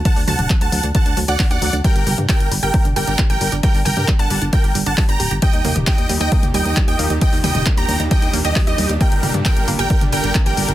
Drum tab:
HH |xooxxxoxxxoxoxox|xxoxxxoxxxoxxxox|xooxxxoxxxoxoxox|xxoxxxoxxxoxxxox|
CP |----x-------x---|----x-------x---|----x-------x---|----x-------x---|
T2 |--oo------------|--oo-----o------|--oo------------|--oo-----o------|
BD |o---o---o---o---|o---o---o---o---|o---o---o---o---|o---o---o---o---|

HH |xooxxxoxxxoxoxox|xxoxxxoxxxoxxxox|
CP |----x-------x---|----x-------x---|
T2 |--oo------------|--oo-----o------|
BD |o---o---o---o---|o---o---o---o---|